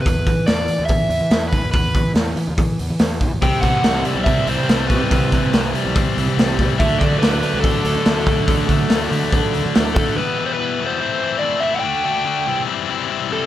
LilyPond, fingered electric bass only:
\new Staff \with { instrumentName = "Fingered electric bass" } { \clef bass \time 4/4 \key e \minor \tempo 4 = 142 e,8 e8 e,8 e16 e,16 e8 e,16 e16 e,8 e16 e,16 | e,8 e8 e,8 e16 e,16 e8 e,16 e16 e,8 e16 e,16 | c,8 c8 c,8 c16 c,16 c8 c,16 c16 c,8 c16 c,16 | c,8 c8 c,8 c16 c,16 c8 c,16 c16 c,8 c16 c,16 |
d,8 d8 d,8 d16 d,16 d8 d,16 d16 d,8 d16 d,16 | d,8 d8 d,8 d16 d,16 d8 d,16 d16 d,8 d16 d,16 | r1 | r1 | }